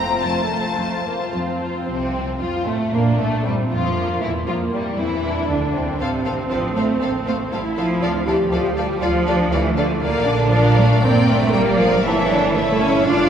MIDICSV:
0, 0, Header, 1, 6, 480
1, 0, Start_track
1, 0, Tempo, 545951
1, 1655, Tempo, 523104
1, 1656, Time_signature, 4, 2, 24, 8
1, 3095, Tempo, 509338
1, 6935, Tempo, 500000
1, 10775, Tempo, 514139
1, 12423, End_track
2, 0, Start_track
2, 0, Title_t, "Violin section"
2, 0, Program_c, 0, 48
2, 0, Note_on_c, 0, 82, 74
2, 205, Note_off_c, 0, 82, 0
2, 205, Note_on_c, 0, 81, 56
2, 1171, Note_off_c, 0, 81, 0
2, 1654, Note_on_c, 0, 60, 57
2, 2103, Note_off_c, 0, 60, 0
2, 2136, Note_on_c, 0, 65, 51
2, 2373, Note_on_c, 0, 57, 51
2, 2377, Note_off_c, 0, 65, 0
2, 2613, Note_on_c, 0, 58, 58
2, 2616, Note_off_c, 0, 57, 0
2, 2855, Note_off_c, 0, 58, 0
2, 2859, Note_on_c, 0, 57, 52
2, 3096, Note_off_c, 0, 57, 0
2, 3107, Note_on_c, 0, 55, 50
2, 3182, Note_off_c, 0, 55, 0
2, 3336, Note_on_c, 0, 65, 56
2, 3807, Note_off_c, 0, 65, 0
2, 3812, Note_on_c, 0, 64, 54
2, 3888, Note_off_c, 0, 64, 0
2, 4055, Note_on_c, 0, 65, 52
2, 4131, Note_off_c, 0, 65, 0
2, 4298, Note_on_c, 0, 55, 55
2, 4534, Note_on_c, 0, 64, 60
2, 4536, Note_off_c, 0, 55, 0
2, 5015, Note_on_c, 0, 62, 55
2, 5021, Note_off_c, 0, 64, 0
2, 5260, Note_off_c, 0, 62, 0
2, 5272, Note_on_c, 0, 60, 50
2, 5506, Note_off_c, 0, 60, 0
2, 5507, Note_on_c, 0, 77, 46
2, 5582, Note_off_c, 0, 77, 0
2, 5741, Note_on_c, 0, 77, 45
2, 5816, Note_off_c, 0, 77, 0
2, 5980, Note_on_c, 0, 77, 42
2, 6055, Note_off_c, 0, 77, 0
2, 6219, Note_on_c, 0, 77, 40
2, 6295, Note_off_c, 0, 77, 0
2, 6465, Note_on_c, 0, 77, 50
2, 6540, Note_off_c, 0, 77, 0
2, 6704, Note_on_c, 0, 77, 43
2, 6779, Note_off_c, 0, 77, 0
2, 6944, Note_on_c, 0, 77, 46
2, 7020, Note_off_c, 0, 77, 0
2, 7182, Note_on_c, 0, 77, 48
2, 7259, Note_off_c, 0, 77, 0
2, 7426, Note_on_c, 0, 77, 53
2, 7502, Note_off_c, 0, 77, 0
2, 7672, Note_on_c, 0, 77, 48
2, 7749, Note_off_c, 0, 77, 0
2, 7896, Note_on_c, 0, 77, 44
2, 7973, Note_off_c, 0, 77, 0
2, 8130, Note_on_c, 0, 77, 46
2, 8207, Note_off_c, 0, 77, 0
2, 8372, Note_on_c, 0, 77, 59
2, 8449, Note_off_c, 0, 77, 0
2, 8610, Note_on_c, 0, 77, 52
2, 8687, Note_off_c, 0, 77, 0
2, 8850, Note_on_c, 0, 77, 54
2, 8927, Note_off_c, 0, 77, 0
2, 9085, Note_on_c, 0, 77, 51
2, 9162, Note_off_c, 0, 77, 0
2, 9329, Note_on_c, 0, 77, 62
2, 9780, Note_off_c, 0, 77, 0
2, 9804, Note_on_c, 0, 77, 61
2, 10283, Note_off_c, 0, 77, 0
2, 10291, Note_on_c, 0, 79, 65
2, 10762, Note_off_c, 0, 79, 0
2, 10774, Note_on_c, 0, 79, 62
2, 10848, Note_off_c, 0, 79, 0
2, 11024, Note_on_c, 0, 77, 64
2, 11255, Note_off_c, 0, 77, 0
2, 11255, Note_on_c, 0, 76, 67
2, 11724, Note_off_c, 0, 76, 0
2, 11735, Note_on_c, 0, 76, 64
2, 12206, Note_off_c, 0, 76, 0
2, 12209, Note_on_c, 0, 77, 69
2, 12423, Note_off_c, 0, 77, 0
2, 12423, End_track
3, 0, Start_track
3, 0, Title_t, "Violin section"
3, 0, Program_c, 1, 48
3, 0, Note_on_c, 1, 65, 39
3, 0, Note_on_c, 1, 72, 41
3, 446, Note_off_c, 1, 72, 0
3, 448, Note_off_c, 1, 65, 0
3, 456, Note_on_c, 1, 72, 36
3, 459, Note_on_c, 1, 65, 36
3, 928, Note_off_c, 1, 72, 0
3, 930, Note_off_c, 1, 65, 0
3, 940, Note_on_c, 1, 65, 39
3, 940, Note_on_c, 1, 72, 35
3, 1406, Note_off_c, 1, 72, 0
3, 1408, Note_off_c, 1, 65, 0
3, 1417, Note_on_c, 1, 65, 38
3, 1417, Note_on_c, 1, 72, 39
3, 1650, Note_off_c, 1, 72, 0
3, 1651, Note_off_c, 1, 65, 0
3, 1664, Note_on_c, 1, 60, 55
3, 2108, Note_off_c, 1, 60, 0
3, 2142, Note_on_c, 1, 65, 53
3, 2375, Note_off_c, 1, 65, 0
3, 2384, Note_on_c, 1, 57, 50
3, 2617, Note_on_c, 1, 58, 57
3, 2621, Note_off_c, 1, 57, 0
3, 2690, Note_off_c, 1, 58, 0
3, 2863, Note_on_c, 1, 57, 57
3, 3093, Note_off_c, 1, 57, 0
3, 3100, Note_on_c, 1, 55, 53
3, 3175, Note_off_c, 1, 55, 0
3, 3348, Note_on_c, 1, 65, 56
3, 3813, Note_off_c, 1, 65, 0
3, 3832, Note_on_c, 1, 64, 51
3, 3907, Note_off_c, 1, 64, 0
3, 4067, Note_on_c, 1, 65, 53
3, 4142, Note_off_c, 1, 65, 0
3, 4315, Note_on_c, 1, 55, 53
3, 4390, Note_off_c, 1, 55, 0
3, 4546, Note_on_c, 1, 64, 55
3, 5017, Note_off_c, 1, 64, 0
3, 5029, Note_on_c, 1, 62, 53
3, 5267, Note_off_c, 1, 62, 0
3, 5268, Note_on_c, 1, 60, 52
3, 5504, Note_off_c, 1, 60, 0
3, 5507, Note_on_c, 1, 69, 48
3, 5507, Note_on_c, 1, 72, 48
3, 5582, Note_off_c, 1, 72, 0
3, 5583, Note_off_c, 1, 69, 0
3, 5735, Note_on_c, 1, 69, 45
3, 5740, Note_on_c, 1, 72, 45
3, 5811, Note_off_c, 1, 69, 0
3, 5816, Note_off_c, 1, 72, 0
3, 5979, Note_on_c, 1, 69, 44
3, 5979, Note_on_c, 1, 72, 48
3, 6054, Note_off_c, 1, 72, 0
3, 6055, Note_off_c, 1, 69, 0
3, 6220, Note_on_c, 1, 69, 41
3, 6223, Note_on_c, 1, 72, 41
3, 6295, Note_off_c, 1, 69, 0
3, 6298, Note_off_c, 1, 72, 0
3, 6454, Note_on_c, 1, 69, 47
3, 6460, Note_on_c, 1, 72, 46
3, 6529, Note_off_c, 1, 69, 0
3, 6535, Note_off_c, 1, 72, 0
3, 6688, Note_on_c, 1, 72, 44
3, 6689, Note_on_c, 1, 69, 42
3, 6763, Note_off_c, 1, 72, 0
3, 6765, Note_off_c, 1, 69, 0
3, 6932, Note_on_c, 1, 72, 45
3, 6933, Note_on_c, 1, 69, 47
3, 7009, Note_off_c, 1, 69, 0
3, 7009, Note_off_c, 1, 72, 0
3, 7171, Note_on_c, 1, 69, 48
3, 7172, Note_on_c, 1, 72, 45
3, 7247, Note_off_c, 1, 69, 0
3, 7249, Note_off_c, 1, 72, 0
3, 7415, Note_on_c, 1, 69, 54
3, 7415, Note_on_c, 1, 74, 52
3, 7492, Note_off_c, 1, 69, 0
3, 7492, Note_off_c, 1, 74, 0
3, 7659, Note_on_c, 1, 69, 50
3, 7659, Note_on_c, 1, 74, 49
3, 7736, Note_off_c, 1, 69, 0
3, 7736, Note_off_c, 1, 74, 0
3, 7897, Note_on_c, 1, 74, 46
3, 7899, Note_on_c, 1, 69, 49
3, 7974, Note_off_c, 1, 74, 0
3, 7976, Note_off_c, 1, 69, 0
3, 8135, Note_on_c, 1, 74, 45
3, 8137, Note_on_c, 1, 69, 46
3, 8212, Note_off_c, 1, 74, 0
3, 8214, Note_off_c, 1, 69, 0
3, 8376, Note_on_c, 1, 69, 55
3, 8377, Note_on_c, 1, 74, 56
3, 8453, Note_off_c, 1, 69, 0
3, 8454, Note_off_c, 1, 74, 0
3, 8617, Note_on_c, 1, 69, 50
3, 8620, Note_on_c, 1, 74, 47
3, 8694, Note_off_c, 1, 69, 0
3, 8696, Note_off_c, 1, 74, 0
3, 8860, Note_on_c, 1, 69, 52
3, 8860, Note_on_c, 1, 74, 52
3, 8937, Note_off_c, 1, 69, 0
3, 8937, Note_off_c, 1, 74, 0
3, 9100, Note_on_c, 1, 69, 53
3, 9102, Note_on_c, 1, 74, 52
3, 9177, Note_off_c, 1, 69, 0
3, 9178, Note_off_c, 1, 74, 0
3, 9337, Note_on_c, 1, 70, 58
3, 9338, Note_on_c, 1, 74, 66
3, 9784, Note_off_c, 1, 70, 0
3, 9785, Note_off_c, 1, 74, 0
3, 9818, Note_on_c, 1, 70, 60
3, 9819, Note_on_c, 1, 74, 64
3, 10282, Note_off_c, 1, 70, 0
3, 10282, Note_off_c, 1, 74, 0
3, 10293, Note_on_c, 1, 70, 64
3, 10294, Note_on_c, 1, 74, 64
3, 10765, Note_off_c, 1, 70, 0
3, 10765, Note_off_c, 1, 74, 0
3, 10776, Note_on_c, 1, 74, 60
3, 10778, Note_on_c, 1, 70, 67
3, 11245, Note_off_c, 1, 74, 0
3, 11246, Note_off_c, 1, 70, 0
3, 11260, Note_on_c, 1, 73, 61
3, 11261, Note_on_c, 1, 69, 69
3, 11724, Note_off_c, 1, 69, 0
3, 11729, Note_off_c, 1, 73, 0
3, 11735, Note_on_c, 1, 69, 59
3, 11739, Note_on_c, 1, 73, 63
3, 12206, Note_off_c, 1, 69, 0
3, 12208, Note_off_c, 1, 73, 0
3, 12216, Note_on_c, 1, 69, 66
3, 12218, Note_on_c, 1, 74, 64
3, 12423, Note_off_c, 1, 69, 0
3, 12423, Note_off_c, 1, 74, 0
3, 12423, End_track
4, 0, Start_track
4, 0, Title_t, "Viola section"
4, 0, Program_c, 2, 48
4, 0, Note_on_c, 2, 57, 39
4, 0, Note_on_c, 2, 60, 38
4, 160, Note_off_c, 2, 60, 0
4, 161, Note_off_c, 2, 57, 0
4, 209, Note_on_c, 2, 57, 53
4, 900, Note_off_c, 2, 57, 0
4, 930, Note_on_c, 2, 58, 43
4, 1000, Note_off_c, 2, 58, 0
4, 1175, Note_on_c, 2, 60, 45
4, 1645, Note_off_c, 2, 60, 0
4, 2622, Note_on_c, 2, 62, 49
4, 3064, Note_off_c, 2, 62, 0
4, 3097, Note_on_c, 2, 60, 42
4, 3576, Note_off_c, 2, 60, 0
4, 3580, Note_on_c, 2, 58, 47
4, 3814, Note_off_c, 2, 58, 0
4, 3822, Note_on_c, 2, 57, 43
4, 4058, Note_on_c, 2, 58, 46
4, 4062, Note_off_c, 2, 57, 0
4, 4533, Note_off_c, 2, 58, 0
4, 4547, Note_on_c, 2, 60, 47
4, 4786, Note_off_c, 2, 60, 0
4, 4786, Note_on_c, 2, 62, 49
4, 5489, Note_off_c, 2, 62, 0
4, 5504, Note_on_c, 2, 60, 57
4, 6937, Note_off_c, 2, 60, 0
4, 6942, Note_on_c, 2, 64, 62
4, 7414, Note_on_c, 2, 65, 54
4, 7417, Note_off_c, 2, 64, 0
4, 7654, Note_off_c, 2, 65, 0
4, 7657, Note_on_c, 2, 67, 63
4, 8354, Note_off_c, 2, 67, 0
4, 8370, Note_on_c, 2, 65, 64
4, 8604, Note_off_c, 2, 65, 0
4, 8611, Note_on_c, 2, 62, 61
4, 8845, Note_off_c, 2, 62, 0
4, 8850, Note_on_c, 2, 57, 65
4, 9318, Note_off_c, 2, 57, 0
4, 9333, Note_on_c, 2, 58, 65
4, 9571, Note_off_c, 2, 58, 0
4, 9573, Note_on_c, 2, 62, 76
4, 10300, Note_off_c, 2, 62, 0
4, 10307, Note_on_c, 2, 60, 65
4, 10781, Note_off_c, 2, 60, 0
4, 10783, Note_on_c, 2, 58, 67
4, 11249, Note_off_c, 2, 58, 0
4, 11256, Note_on_c, 2, 64, 65
4, 11331, Note_off_c, 2, 64, 0
4, 11502, Note_on_c, 2, 62, 73
4, 11735, Note_off_c, 2, 62, 0
4, 11740, Note_on_c, 2, 64, 72
4, 12209, Note_off_c, 2, 64, 0
4, 12223, Note_on_c, 2, 65, 76
4, 12423, Note_off_c, 2, 65, 0
4, 12423, End_track
5, 0, Start_track
5, 0, Title_t, "Cello section"
5, 0, Program_c, 3, 48
5, 0, Note_on_c, 3, 41, 52
5, 133, Note_off_c, 3, 41, 0
5, 212, Note_on_c, 3, 41, 55
5, 617, Note_off_c, 3, 41, 0
5, 694, Note_on_c, 3, 41, 54
5, 1096, Note_off_c, 3, 41, 0
5, 1176, Note_on_c, 3, 41, 53
5, 1578, Note_off_c, 3, 41, 0
5, 1653, Note_on_c, 3, 48, 57
5, 2102, Note_off_c, 3, 48, 0
5, 2139, Note_on_c, 3, 53, 60
5, 2213, Note_off_c, 3, 53, 0
5, 2376, Note_on_c, 3, 57, 58
5, 2612, Note_off_c, 3, 57, 0
5, 2619, Note_on_c, 3, 58, 65
5, 2858, Note_off_c, 3, 58, 0
5, 2863, Note_on_c, 3, 57, 58
5, 3093, Note_off_c, 3, 57, 0
5, 3099, Note_on_c, 3, 55, 56
5, 3338, Note_off_c, 3, 55, 0
5, 3339, Note_on_c, 3, 53, 61
5, 3808, Note_off_c, 3, 53, 0
5, 3817, Note_on_c, 3, 52, 56
5, 3893, Note_off_c, 3, 52, 0
5, 4058, Note_on_c, 3, 53, 68
5, 4134, Note_off_c, 3, 53, 0
5, 4301, Note_on_c, 3, 55, 57
5, 4537, Note_off_c, 3, 55, 0
5, 4543, Note_on_c, 3, 52, 65
5, 5015, Note_off_c, 3, 52, 0
5, 5024, Note_on_c, 3, 50, 59
5, 5259, Note_off_c, 3, 50, 0
5, 5263, Note_on_c, 3, 48, 60
5, 5489, Note_off_c, 3, 48, 0
5, 5500, Note_on_c, 3, 48, 61
5, 5968, Note_off_c, 3, 48, 0
5, 5977, Note_on_c, 3, 53, 71
5, 6213, Note_off_c, 3, 53, 0
5, 6217, Note_on_c, 3, 57, 62
5, 6452, Note_off_c, 3, 57, 0
5, 6453, Note_on_c, 3, 58, 70
5, 6529, Note_off_c, 3, 58, 0
5, 6695, Note_on_c, 3, 57, 67
5, 6770, Note_off_c, 3, 57, 0
5, 6932, Note_on_c, 3, 55, 70
5, 7008, Note_off_c, 3, 55, 0
5, 7167, Note_on_c, 3, 53, 75
5, 7640, Note_off_c, 3, 53, 0
5, 7648, Note_on_c, 3, 52, 69
5, 7725, Note_off_c, 3, 52, 0
5, 7891, Note_on_c, 3, 53, 75
5, 8124, Note_off_c, 3, 53, 0
5, 8129, Note_on_c, 3, 55, 73
5, 8362, Note_off_c, 3, 55, 0
5, 8366, Note_on_c, 3, 53, 86
5, 8846, Note_on_c, 3, 52, 78
5, 8847, Note_off_c, 3, 53, 0
5, 9085, Note_on_c, 3, 50, 77
5, 9087, Note_off_c, 3, 52, 0
5, 9314, Note_off_c, 3, 50, 0
5, 9325, Note_on_c, 3, 50, 82
5, 9803, Note_off_c, 3, 50, 0
5, 9810, Note_on_c, 3, 53, 91
5, 10056, Note_off_c, 3, 53, 0
5, 10056, Note_on_c, 3, 57, 80
5, 10297, Note_off_c, 3, 57, 0
5, 10297, Note_on_c, 3, 58, 82
5, 10535, Note_off_c, 3, 58, 0
5, 10538, Note_on_c, 3, 57, 91
5, 10777, Note_off_c, 3, 57, 0
5, 10778, Note_on_c, 3, 55, 93
5, 11012, Note_on_c, 3, 53, 83
5, 11015, Note_off_c, 3, 55, 0
5, 11254, Note_off_c, 3, 53, 0
5, 11254, Note_on_c, 3, 52, 86
5, 11726, Note_off_c, 3, 52, 0
5, 11736, Note_on_c, 3, 57, 92
5, 11976, Note_on_c, 3, 61, 82
5, 11977, Note_off_c, 3, 57, 0
5, 12210, Note_on_c, 3, 62, 97
5, 12216, Note_off_c, 3, 61, 0
5, 12423, Note_off_c, 3, 62, 0
5, 12423, End_track
6, 0, Start_track
6, 0, Title_t, "Double bass section"
6, 0, Program_c, 4, 48
6, 0, Note_on_c, 4, 29, 55
6, 135, Note_off_c, 4, 29, 0
6, 1652, Note_on_c, 4, 36, 57
6, 2101, Note_off_c, 4, 36, 0
6, 2134, Note_on_c, 4, 41, 48
6, 2371, Note_off_c, 4, 41, 0
6, 2375, Note_on_c, 4, 45, 51
6, 2617, Note_off_c, 4, 45, 0
6, 2618, Note_on_c, 4, 46, 55
6, 2857, Note_on_c, 4, 45, 47
6, 2858, Note_off_c, 4, 46, 0
6, 2930, Note_off_c, 4, 45, 0
6, 3090, Note_on_c, 4, 43, 59
6, 3165, Note_off_c, 4, 43, 0
6, 3331, Note_on_c, 4, 41, 49
6, 3804, Note_off_c, 4, 41, 0
6, 3815, Note_on_c, 4, 40, 50
6, 4053, Note_off_c, 4, 40, 0
6, 4054, Note_on_c, 4, 41, 49
6, 4298, Note_on_c, 4, 43, 54
6, 4299, Note_off_c, 4, 41, 0
6, 4536, Note_off_c, 4, 43, 0
6, 4539, Note_on_c, 4, 40, 52
6, 5023, Note_off_c, 4, 40, 0
6, 5024, Note_on_c, 4, 38, 58
6, 5259, Note_off_c, 4, 38, 0
6, 5266, Note_on_c, 4, 36, 53
6, 5499, Note_on_c, 4, 33, 56
6, 5503, Note_off_c, 4, 36, 0
6, 5921, Note_off_c, 4, 33, 0
6, 5977, Note_on_c, 4, 33, 49
6, 6401, Note_off_c, 4, 33, 0
6, 6459, Note_on_c, 4, 33, 56
6, 6880, Note_off_c, 4, 33, 0
6, 6933, Note_on_c, 4, 33, 57
6, 7355, Note_off_c, 4, 33, 0
6, 7414, Note_on_c, 4, 38, 69
6, 7837, Note_off_c, 4, 38, 0
6, 7892, Note_on_c, 4, 38, 58
6, 8310, Note_off_c, 4, 38, 0
6, 8367, Note_on_c, 4, 38, 66
6, 8791, Note_off_c, 4, 38, 0
6, 8850, Note_on_c, 4, 38, 69
6, 9272, Note_off_c, 4, 38, 0
6, 9324, Note_on_c, 4, 34, 72
6, 10257, Note_off_c, 4, 34, 0
6, 10301, Note_on_c, 4, 31, 71
6, 12212, Note_on_c, 4, 29, 72
6, 12218, Note_off_c, 4, 31, 0
6, 12423, Note_off_c, 4, 29, 0
6, 12423, End_track
0, 0, End_of_file